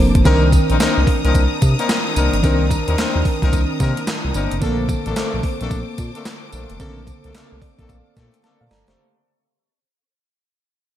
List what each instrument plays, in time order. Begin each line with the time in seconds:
Already playing: fm electric piano F3 A#3 C5, string section C5 A5 D6
0.00 analog synth bass F1, fm electric piano C4 D4 A#4
0.15 analog synth bass G1, kick, closed hi-hat
0.24 analog synth bass C2, fm electric piano D#3 C4 D4 A#4, horn section A#3 C4 D4 D#4 A#4, string section D4 A#5 D#6, kick, closed hi-hat, tambourine
0.52 kick, closed hi-hat, tambourine
0.69 analog synth bass A#1, horn section A#3 C4 D4 D#4 A#4, closed hi-hat
0.80 analog synth bass C2, horn section A#3 C4 D4 D#4 A#4, snare, clap, closed hi-hat, tambourine
0.97 analog synth bass C2
1.07 kick, open hi-hat
1.24 analog synth bass C2, horn section A#3 C4 D4 D#4 A#4, closed hi-hat
1.35 analog synth bass C2, kick, closed hi-hat, tambourine
1.62 analog synth bass C3, kick, closed hi-hat, tambourine
1.79 horn section A#3 C4 D4 D#4 A#4, closed hi-hat
1.89 snare, clap, closed hi-hat, tambourine
2.16 analog synth bass C2, horn section A#3 C4 D4 D#4 A#4, closed hi-hat, tambourine
2.33 analog synth bass G1, closed hi-hat
2.43 analog synth bass C2, fm electric piano D#3 C4 D4 A#4, horn section A#3 C4 D4 D#4 A#4, kick, closed hi-hat, tambourine
2.71 kick, closed hi-hat, tambourine
2.88 analog synth bass D#2, horn section A#3 C4 D4 D#4 A#4, closed hi-hat
2.98 analog synth bass D#2, horn section A#3 C4 D4 D#4 A#4, snare, clap, closed hi-hat, tambourine
3.15 analog synth bass D#2
3.25 kick, open hi-hat
3.42 analog synth bass C2, horn section A#3 C4 D4 D#4 A#4, kick, closed hi-hat
3.53 analog synth bass C2, kick, closed hi-hat, tambourine
3.80 analog synth bass C3, horn section A#3 C4 D4 D#4 A#4, kick, closed hi-hat, tambourine
3.97 closed hi-hat
4.07 snare, clap, closed hi-hat, tambourine
4.25 analog synth bass C2
4.34 analog synth bass G1, horn section A#3 C4 D4 D#4 A#4, closed hi-hat, tambourine
4.51 analog synth bass F1, closed hi-hat
4.61 analog synth bass A#1, fm electric piano D3 A#3 C4 A4, horn section A3 A#3 C4 D4 A4, string section C5 A5 D6, kick, closed hi-hat, tambourine
4.89 kick, closed hi-hat, tambourine
5.06 analog synth bass A1, horn section A3 A#3 C4 D4 A4, closed hi-hat
5.16 analog synth bass A#1, horn section A3 A#3 C4 D4 A4, snare, clap, closed hi-hat, tambourine
5.34 analog synth bass A#1
5.43 kick, open hi-hat
5.60 analog synth bass A#1, horn section A3 A#3 C4 D4 A4, closed hi-hat
5.71 analog synth bass A#1, kick, closed hi-hat, tambourine
5.98 analog synth bass A#2, kick, closed hi-hat, tambourine
6.15 horn section A3 A#3 C4 D4 A4, closed hi-hat
6.25 snare, clap, closed hi-hat, tambourine
6.52 analog synth bass A#1, horn section A3 A#3 C4 D4 A4, closed hi-hat, tambourine
6.70 analog synth bass F1, closed hi-hat
6.79 analog synth bass A#1, fm electric piano C#3 A#3 C4 A4, horn section A3 A#3 C4 D4 A4, kick, closed hi-hat, tambourine
6.85 fm electric piano D3
7.07 kick, closed hi-hat, tambourine
7.24 analog synth bass C2, horn section A3 A#3 C4 D4 A4, closed hi-hat
7.34 analog synth bass C2, horn section A3 A#3 C4 D4 A4, snare, clap, closed hi-hat, tambourine
7.52 analog synth bass C2
7.62 fm electric piano D5, kick, open hi-hat
7.79 analog synth bass A#1, horn section A3 A#3 C4 D4 A4, kick, closed hi-hat
7.89 analog synth bass A#1, fm electric piano F5, kick, closed hi-hat, tambourine
8.16 analog synth bass A#2, horn section A3 A#3 C4 D4 A4, kick, snare, closed hi-hat, tambourine
8.34 closed hi-hat
8.43 horn section A3 A#3 C4 D4 A4, fm electric piano A5, snare, closed hi-hat
8.61 analog synth bass A#2, fm electric piano C5 F5
8.71 analog synth bass G1, fm electric piano A4 D5 A#5, snare, open hi-hat
8.87 analog synth bass F1, horn section A3 A#3 C4 D4 A4, fm electric piano G4 C5, snare, closed hi-hat